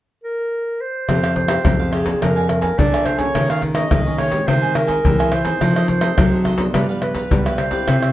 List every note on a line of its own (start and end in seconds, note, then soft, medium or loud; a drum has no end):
0.24 0.82 A#4 medium
0.81 1.35 C5 medium
1.08 1.57 F2 medium
1.08 1.63 F3 medium
1.08 1.47 C4 medium
1.08 1.21 F4 soft
1.08 1.47 F4 medium
1.08 1.22 G4 soft
1.08 1.47 G4 medium
1.08 1.22 C5 medium
1.08 1.22 F5 medium
1.08 pandeiro medium
1.08 tamborim medium
1.08 shaker medium
1.08 surdo medium
1.23 1.35 G4 soft
1.23 1.35 C5 medium
1.23 1.35 F5 medium
1.23 pandeiro soft
1.23 tamborim medium
1.23 shaker soft
1.35 1.94 C5 medium
1.35 muted cavaquinho stroke soft
1.35 pandeiro medium
1.35 surdo soft
1.48 1.74 C4 medium
1.48 1.74 F4 medium
1.48 1.63 G4 soft
1.48 1.74 G4 medium
1.48 1.63 C5 medium
1.48 1.62 F5 medium
1.48 pandeiro medium
1.48 tamborim medium
1.48 shaker medium
1.64 2.13 F2 medium
1.64 2.19 C3 medium
1.64 1.78 F4 soft
1.64 1.78 G4 soft
1.64 1.79 C5 soft
1.64 1.78 F5 soft
1.64 pandeiro medium
1.64 tamborim medium
1.64 shaker medium
1.64 surdo loud
1.79 2.04 C4 medium
1.79 2.04 F4 medium
1.79 1.91 G4 soft
1.79 2.04 G4 medium
1.79 1.92 C5 medium
1.79 1.92 F5 medium
1.79 pandeiro soft
1.79 shaker soft
1.92 2.20 F4 medium
1.92 2.20 G4 medium
1.92 2.23 G#4 medium
1.92 2.20 C5 medium
1.92 2.21 F5 medium
1.92 pandeiro medium
1.92 tamborim medium
2.06 2.30 A#3 medium
2.06 2.31 D4 medium
2.06 2.31 G#4 medium
2.06 pandeiro medium
2.06 shaker medium
2.06 surdo soft
2.21 2.70 F2 medium
2.21 2.76 F3 medium
2.21 2.34 D4 soft
2.21 2.48 A#4 medium
2.21 2.35 A#4 soft
2.21 2.35 F5 soft
2.21 2.35 G#5 medium
2.21 pandeiro medium
2.21 tamborim medium
2.21 shaker medium
2.21 surdo medium
2.36 2.74 A#3 medium
2.36 2.75 D4 medium
2.36 2.75 G#4 medium
2.36 2.47 A#4 medium
2.36 2.48 F5 medium
2.36 2.48 G#5 medium
2.36 pandeiro soft
2.36 shaker soft
2.48 2.61 A#4 medium
2.48 muted cavaquinho stroke soft
2.48 pandeiro medium
2.48 tamborim medium
2.48 shaker medium
2.61 2.80 A#4 medium
2.61 2.91 A#4 medium
2.61 2.90 F5 medium
2.61 2.90 G#5 medium
2.61 pandeiro medium
2.61 shaker medium
2.61 surdo soft
2.78 3.26 D3 medium
2.78 3.32 F3 medium
2.78 3.16 A#3 medium
2.78 3.16 D4 medium
2.78 3.17 G#4 medium
2.78 3.07 D5 loud
2.78 pandeiro medium
2.78 shaker medium
2.78 surdo medium
2.92 3.04 A#4 medium
2.92 3.04 F5 medium
2.92 3.05 G#5 medium
2.92 pandeiro soft
2.92 tamborim medium
2.92 shaker soft
3.04 3.18 D4 soft
3.04 3.18 A#4 soft
3.04 3.20 C5 medium
3.04 3.17 F5 medium
3.04 3.16 G#5 medium
3.04 pandeiro medium
3.04 tamborim medium
3.17 3.72 A#3 medium
3.17 3.72 C#4 medium
3.17 3.72 G#4 medium
3.17 3.33 A#4 medium
3.17 3.48 C#5 medium
3.17 3.32 F5 medium
3.17 3.32 G#5 medium
3.17 pandeiro medium
3.17 shaker medium
3.17 surdo soft
3.33 3.89 D#3 medium
3.33 3.83 D#3 medium
3.33 3.47 D#4 soft
3.33 3.47 G#4 medium
3.33 3.48 C#5 medium
3.33 3.47 D#5 medium
3.33 pandeiro medium
3.33 tamborim medium
3.33 shaker medium
3.33 surdo medium
3.49 3.60 G#4 medium
3.49 3.61 C#5 medium
3.49 3.61 D#5 medium
3.49 3.63 F5 medium
3.49 pandeiro soft
3.49 tamborim medium
3.49 shaker soft
3.61 muted cavaquinho stroke soft
3.61 pandeiro medium
3.61 surdo soft
3.74 4.00 A#3 medium
3.74 4.00 C#4 medium
3.74 3.90 G#4 medium
3.74 4.01 G#4 medium
3.74 3.89 C#5 medium
3.74 3.89 D#5 medium
3.74 4.16 D#5 medium
3.74 pandeiro medium
3.74 tamborim medium
3.74 shaker medium
3.90 4.45 A#2 medium
3.90 4.40 D#3 medium
3.90 4.04 D#4 soft
3.90 4.04 G#4 soft
3.90 4.04 C#5 soft
3.90 4.04 D#5 medium
3.90 pandeiro medium
3.90 tamborim medium
3.90 shaker medium
3.90 surdo loud
4.05 4.30 A#3 medium
4.05 4.30 C#4 medium
4.05 4.17 G#4 soft
4.05 4.30 G#4 medium
4.05 4.17 C#5 medium
4.05 4.18 D#5 medium
4.05 pandeiro soft
4.05 shaker soft
4.17 4.46 D#4 medium
4.17 4.46 G#4 medium
4.17 4.46 C#5 medium
4.17 4.49 C#5 loud
4.17 4.47 D#5 medium
4.17 pandeiro medium
4.17 tamborim medium
4.17 shaker medium
4.32 4.57 G#3 medium
4.32 4.57 C4 medium
4.32 4.57 G4 medium
4.32 pandeiro medium
4.32 shaker medium
4.32 surdo soft
4.47 4.96 D#3 loud
4.47 5.02 D#3 medium
4.47 4.61 G4 soft
4.47 4.77 C5 loud
4.47 4.61 C5 medium
4.47 4.61 D#5 medium
4.47 4.61 G#5 soft
4.47 pandeiro medium
4.47 tamborim medium
4.47 shaker medium
4.47 surdo medium
4.62 5.00 G#3 medium
4.62 5.01 C4 medium
4.62 5.01 G4 medium
4.62 4.73 C5 medium
4.62 4.74 D#5 medium
4.62 4.74 G#5 medium
4.62 pandeiro soft
4.62 shaker soft
4.74 5.34 A#4 medium
4.74 muted cavaquinho stroke soft
4.74 pandeiro medium
4.74 tamborim medium
4.87 5.17 C5 soft
4.87 5.16 D#5 medium
4.87 5.16 G#5 medium
4.87 pandeiro medium
4.87 shaker medium
4.87 surdo soft
5.05 5.53 E3 medium
5.05 5.31 G#3 medium
5.05 5.32 C4 medium
5.05 5.32 G4 medium
5.05 pandeiro medium
5.05 shaker medium
5.05 surdo loud
5.19 5.31 C5 medium
5.19 5.31 D#5 medium
5.19 5.32 G#5 medium
5.19 pandeiro soft
5.19 tamborim medium
5.19 shaker soft
5.31 5.45 G4 soft
5.31 5.45 C5 soft
5.31 5.88 C5 loud
5.31 5.44 D#5 medium
5.31 5.43 G#5 medium
5.31 pandeiro medium
5.31 tamborim medium
5.45 5.98 D#3 medium
5.45 5.98 A3 medium
5.45 5.98 C4 medium
5.45 5.60 C5 medium
5.45 5.59 D#5 medium
5.45 5.59 G#5 medium
5.45 pandeiro medium
5.45 shaker medium
5.45 surdo soft
5.61 6.15 F2 medium
5.61 6.10 F3 medium
5.61 5.74 F4 soft
5.61 5.74 A4 soft
5.61 5.75 C5 medium
5.61 5.75 D#5 medium
5.61 pandeiro medium
5.61 tamborim medium
5.61 shaker medium
5.61 surdo medium
5.76 5.87 A4 medium
5.76 5.88 C5 medium
5.76 5.88 D#5 medium
5.76 pandeiro soft
5.76 tamborim medium
5.76 shaker soft
5.88 6.42 C5 medium
5.88 muted cavaquinho stroke soft
5.88 pandeiro medium
5.88 surdo soft
6.01 6.26 D#3 medium
6.01 6.27 A3 medium
6.01 6.27 C4 medium
6.01 6.16 A4 medium
6.01 6.16 C5 medium
6.01 6.15 D#5 medium
6.01 pandeiro medium
6.01 tamborim medium
6.01 shaker medium
6.18 6.72 C3 medium
6.18 6.66 F#3 medium
6.18 6.31 F4 medium
6.18 6.31 A4 soft
6.18 6.31 C5 medium
6.18 6.31 D#5 medium
6.18 pandeiro medium
6.18 tamborim medium
6.18 shaker medium
6.18 surdo loud
6.32 6.56 D#3 medium
6.32 6.57 A3 medium
6.32 6.57 C4 medium
6.32 6.43 A4 medium
6.32 6.44 C5 medium
6.32 6.44 D#5 medium
6.32 pandeiro soft
6.32 shaker soft
6.44 6.72 F4 medium
6.44 6.73 A4 medium
6.44 6.73 C5 medium
6.44 6.73 D#5 medium
6.44 pandeiro medium
6.44 tamborim medium
6.44 surdo soft
6.58 6.83 F3 medium
6.58 6.83 B3 medium
6.58 6.83 D4 medium
6.58 pandeiro medium
6.58 shaker medium
6.58 surdo soft
6.74 7.28 G2 medium
6.74 7.23 G3 medium
6.74 6.87 D4 medium
6.74 6.87 G4 soft
6.74 6.88 B4 medium
6.74 6.88 F5 medium
6.74 pandeiro medium
6.74 tamborim medium
6.74 shaker medium
6.74 surdo medium
6.89 7.27 F3 medium
6.89 7.27 B3 soft
6.89 7.27 D4 medium
6.89 7.01 G4 medium
6.89 7.01 B4 medium
6.89 7.01 F5 medium
6.89 pandeiro soft
6.89 shaker soft
7.01 7.60 B4 medium
7.01 muted cavaquinho stroke soft
7.01 pandeiro medium
7.01 tamborim medium
7.14 7.44 G4 medium
7.14 7.43 B4 medium
7.14 7.43 F5 medium
7.14 pandeiro medium
7.14 shaker medium
7.14 surdo soft
7.31 7.85 D3 medium
7.31 7.58 F3 medium
7.31 7.79 G3 medium
7.31 7.58 B3 medium
7.31 7.58 D4 medium
7.31 pandeiro medium
7.31 shaker medium
7.31 surdo loud
7.45 7.57 G4 soft
7.45 7.58 B4 medium
7.45 7.58 F5 medium
7.45 pandeiro soft
7.45 tamborim medium
7.45 shaker soft
7.58 7.72 D4 soft
7.58 7.72 G4 soft
7.58 7.71 B4 medium
7.58 8.12 C5 medium
7.58 7.70 F5 medium
7.58 pandeiro medium
7.58 tamborim medium
7.71 8.12 C4 medium
7.71 8.12 E4 medium
7.71 8.12 G4 medium
7.71 7.86 G4 medium
7.71 7.86 B4 medium
7.71 7.85 F5 medium
7.71 pandeiro medium
7.71 shaker medium
7.71 surdo soft
7.87 8.12 C3 medium
7.87 8.01 E4 medium
7.87 8.01 G4 medium
7.87 8.01 C5 medium
7.87 8.01 E5 medium
7.87 pandeiro medium
7.87 tamborim medium
7.87 shaker medium
7.87 surdo medium
8.02 8.12 G4 medium
8.02 8.12 C5 medium
8.02 8.12 E5 medium
8.02 pandeiro soft
8.02 tamborim medium
8.02 shaker soft